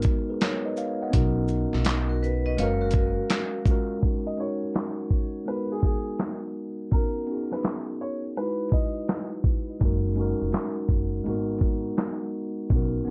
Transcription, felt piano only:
4.27 D#5
4.40 C#5
5.48 B4
5.72 G#4
5.85 G#4
6.93 A#4
7.52 B4
8.01 C#5
8.37 B4
8.73 D#5

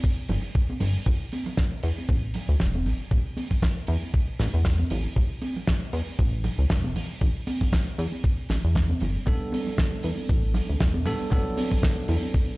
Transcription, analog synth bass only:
0.29 G1
0.80 G1
1.06 A1
1.83 E2
2.09 A1
2.49 D2
2.60 E1
2.86 A1
3.11 A1
3.88 E2
4.40 A1
4.54 E2
4.91 A1
5.16 A1
5.93 E2
6.19 A1
6.58 C#2
6.70 E1
6.95 A1
7.21 A1
7.98 E2
8.50 A1
8.64 E2
9.01 G1
9.27 A1
10.04 E2
10.29 A1
10.69 D2
10.81 E1
11.06 A1
11.32 A1
12.09 E2

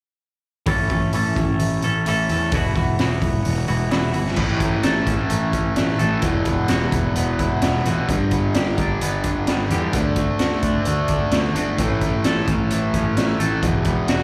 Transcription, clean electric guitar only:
0.66 A2 E3 A3 C#4 A4
0.91 A3 C#4 A4
1.13 E3 A3 C#4 A4
1.84 A3 C#4 A4
2.07 A2 E3 A3 C#4 A4
2.31 A3 C#4 A4
2.53 E2 B2 E3 B3 E4 F#4
2.76 E3 B3 E4 F#4
2.99 E3 B3 E4 F#4
3.68 E3 B3 E4 F#4
3.91 E2 B2 E3 B3 E4 F#4
4.13 E3 B3 E4 F#4
4.37 A2
4.61 A3
4.84 A4
5.08 C#4
5.30 A3
5.53 C#4
5.77 A3
5.99 A4
6.23 E2
6.46 B3
6.69 F#4
6.93 E4
7.16 B3
7.40 E4
7.63 B3
7.86 F#4
8.09 G2
8.33 B3
8.56 G4
8.79 D4
9.02 B3
9.25 D4
9.48 B3
9.71 G4
9.94 D3
10.17 A3
10.39 F#4
10.64 D4
10.87 A3
11.10 D4
11.33 A3
11.56 F#4
11.79 A2
12.03 A3
12.25 A4
12.49 C#4
12.71 A3
12.95 C#4
13.17 A3
13.40 A4
13.63 E2
13.87 B3
14.09 F#4

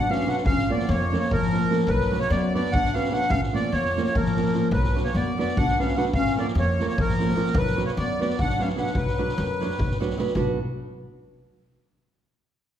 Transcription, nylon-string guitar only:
0.09 F#3 B3 D4 F#4 B4
0.25 F#3 B3 D4 F#4 B4
0.68 F3 A#3 C#4 F4 A#4
1.12 F3 A#3 C#4 F4 A#4
1.52 F3 A#3 C#4 F4 A#4
1.70 F3 A#3 C#4 F4 A#4
2.11 F#3 B3 D4 F#4 B4
2.54 F#3 B3 D4 F#4 B4
2.94 F#3 B3 D4 F#4 B4
3.10 F#3 B3 D4 F#4 B4
3.53 F3 A#3 C#4 F4 A#4
3.96 F3 A#3 C#4 F4 A#4
4.36 F3 A#3 C#4 F4 A#4
4.53 F3 A#3 C#4 F4 A#4
4.95 F#3 B3 D4 F#4 B4
5.38 F#3 B3 D4 F#4 B4
5.77 F#3 B3 D4 F#4 B4
5.96 F#3 B3 D4 F#4 B4
6.36 F3 A#3 C#4 F4 A#4
6.80 F3 A#3 C#4 F4 A#4
7.19 F3 A#3 C#4 F4 A#4
7.35 F3 A#3 C#4 F4 A#4
7.76 F#3 B3 D4 F#4 B4
8.19 F#3 B3 D4 F#4 B4
8.59 F#3 B3 D4 F#4 B4
8.76 F#3 B3 D4 F#4 B4
9.18 F#3 B3 D4 F#4 B4
9.61 F#3 B3 D4 F#4 B4
10.00 F#3 B3 D4 F#4 B4
10.18 F#3 B3 D4 F#4 B4
10.36 B3 D4 F#4 B4

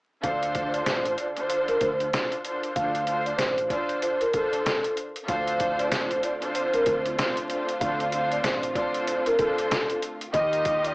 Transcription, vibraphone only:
0.23 F5
0.73 D5
0.86 C5
1.19 D5
1.49 C5
1.69 A#4
1.81 C5
2.76 F5
3.26 D5
3.38 C5
3.70 D5
4.03 C5
4.21 A#4
4.35 A4
4.66 A4
5.29 F5
5.80 D5
5.91 C5
6.24 D5
6.55 C5
6.74 A#4
6.87 C5
7.80 F5
8.33 D5
8.43 C5
8.75 D5
9.07 C5
9.27 A#4
9.38 A4
9.70 A4
10.33 D#5
10.85 D5

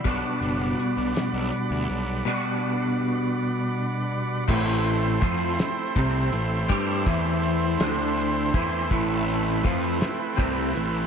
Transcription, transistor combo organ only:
Already playing: B5
0.04 D5 F#5
2.27 F#5
4.47 A3 C4 E4 C5
8.92 B4

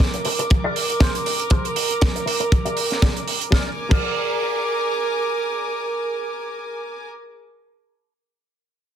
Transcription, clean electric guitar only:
0.14 muted clean electric guitar stroke
0.25 muted clean electric guitar stroke
0.39 muted clean electric guitar stroke
0.50 muted clean electric guitar stroke
0.64 G#4 A#4 D5
0.89 muted clean electric guitar stroke
1.00 G#4 A#4 C5
1.26 muted clean electric guitar stroke
1.51 G#4 A#4 C5
1.76 muted clean electric guitar stroke
2.15 muted clean electric guitar stroke
2.26 muted clean electric guitar stroke
2.40 muted clean electric guitar stroke
2.51 muted clean electric guitar stroke
2.65 G#4 A#4 D5
2.91 muted clean electric guitar stroke
3.02 G#4 A#4 D5
3.28 muted clean electric guitar stroke
3.51 G#4 A#4 D5
3.90 G#4 A#4
3.94 D5

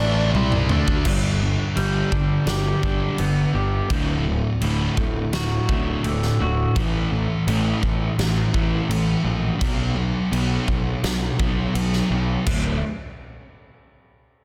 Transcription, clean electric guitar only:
1.05 G2
1.76 G3
2.12 D4
2.48 G4
2.83 D4
3.19 B3
3.55 G4
4.62 A2
4.98 A3
5.34 F#4
5.69 A3
6.05 D3
6.42 F#4

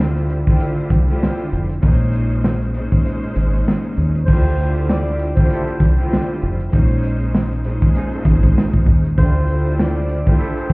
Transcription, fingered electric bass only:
Already playing: D2
0.90 C2
1.53 F1
1.83 A#1
3.36 G#1
3.98 D#2
4.28 D2
5.80 C2
6.43 F1
6.73 A#1
8.25 G#1
8.87 D#2
9.18 D2

